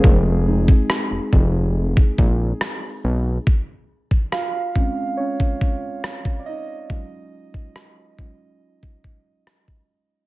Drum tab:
SD |----r-------r---|----r-------r---|----r-------r---|
BD |o--o--o--oo-----|o--o--o--oo--o--|o--o--o--oo--o--|